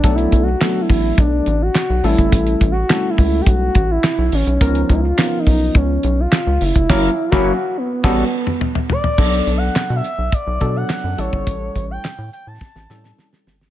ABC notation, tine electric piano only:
X:1
M:4/4
L:1/16
Q:1/4=105
K:Bm
V:1 name="Tine electric piano"
[F,A,B,DA]3 z [F,A,B,DA]6 z4 [G,A,CEA]2- | [G,A,CEA]3 z [G,A,CEA]6 z6 | [^E,B,C^D^A]3 z [E,B,CDA]6 z6 | [F,^A,CE^A]2 z [F,A,CEF]2 z3 [G,B,CF=A]2 z6 |
[F,B,DA]6 z4 [F,B,DA]4 [G,CEA]2- | [G,CEA]4 z6 [G,CEA]4- [G,CEA] z |]